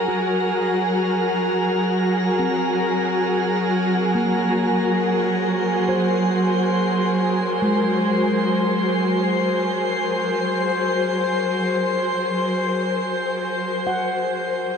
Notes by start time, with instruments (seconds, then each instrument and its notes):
Already playing: string section F#3 F#4 G#4 A#4 F#5, synth texture A#4 A#5
0.08 handpan F#4
2.39 handpan C4
4.15 handpan A#3
4.73 synth texture C5 C6
5.88 handpan C5
7.33 string section C5
7.62 handpan G#3
13.87 handpan F#5